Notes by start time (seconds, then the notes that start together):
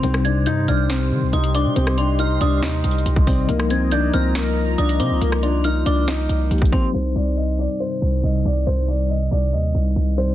0.02 C2 C3 G3 C4 D#4 G4 C5 D#5 C6, closed hi-hat
0.14 cross-stick
0.25 D4 G#6, closed hi-hat
0.46 G2 D#4 G6, closed hi-hat
0.68 C2 D4 F6, closed hi-hat
0.89 C4, snare, closed hi-hat
1.11 D#3
1.22 C2
1.33 C2 D#4 D#6, closed hi-hat
1.44 closed hi-hat
1.55 D4 D6, closed hi-hat
1.65 C3
1.76 C2 C4, closed hi-hat
1.87 cross-stick
1.98 D4 C6, closed hi-hat
2.19 D#4 F6, closed hi-hat
2.41 C2 D4 D#6, closed hi-hat
2.63 D#2 D#4, snare, closed hi-hat
2.84 C2, closed hi-hat
2.91 closed hi-hat
2.98 closed hi-hat
3.06 C2, closed hi-hat
3.16 kick
3.26 C3 G3 C4 D#4 D5, kick, open hi-hat
3.47 C2 F3 A#3 D#4 F4 A#4 A#5, closed hi-hat
3.60 cross-stick
3.70 C4 G#6, closed hi-hat
3.92 D4 G6, closed hi-hat
4.13 C2 C4 F6, closed hi-hat
4.35 A#3, snare, closed hi-hat
4.78 C2 D4 D#6, closed hi-hat
4.89 closed hi-hat
5.00 C3 C4 D6, closed hi-hat
5.11 C2
5.21 C2 A#3, closed hi-hat
5.32 cross-stick
5.43 D4 C6, closed hi-hat
5.64 D#4 F6, closed hi-hat
5.86 C2 D4 D6, closed hi-hat
6.08 D#4, snare, closed hi-hat
6.29 C2, closed hi-hat
6.51 C2 F3 A#3 D#4 G4, closed hi-hat
6.58 kick, closed hi-hat
6.65 closed hi-hat
6.72 C4 C6, kick
6.93 C2 C3 G3 C4 D#4 C5
7.16 C2 D5
7.37 D#5
7.59 D5
7.80 C5
8.02 C2
8.23 C2 D#5
8.45 C2 D5
8.67 C2 C5
8.88 D5
9.10 D#5
9.31 C2 D5
9.53 D#2 D#5
9.75 C2
9.96 C2
10.17 G3 C4 D#4 C5 D5